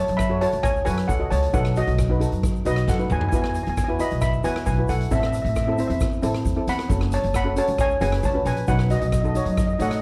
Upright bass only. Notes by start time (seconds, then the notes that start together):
0.09 F#2
0.53 C#2
0.87 F#2
1.09 C#2
1.31 C#2
1.54 B1
1.87 B1
2.32 F#2
2.66 B1
2.88 F#2
3.11 D#2
3.33 E2
3.67 E2
4.12 B1
4.45 E2
4.67 B1
4.89 B1
5.11 A1
5.45 A1
5.90 E2
6.23 A1
6.45 E2
6.67 E2
6.90 F#1
7.24 F#1
7.68 C#2
8.01 F#1
8.23 C#2
8.45 A#1
8.68 B1
9.01 B1
9.45 F#2
9.79 A2